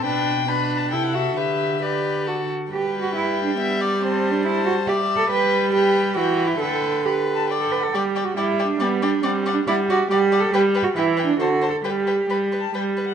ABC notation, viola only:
X:1
M:3/4
L:1/8
Q:1/4=138
K:G
V:1 name="Viola" clef=bass
D2 D2 E F | G2 G2 F z | G,6- | G,6 |
G,4 E,2 | D,4- D, z | G,2 G,2 G,2 | G,2 G,2 G,2 |
G,2 E,2 D,2 | G,2 G,2 G,2 |]